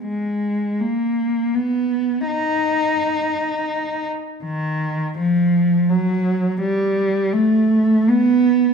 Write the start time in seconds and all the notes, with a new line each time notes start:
0.04 G#3
0.80 A#3
1.55 B3
2.28 D#4
4.44 D#3
5.19 F3
5.89 F#3
6.62 G3
7.33 A3
8.09 B3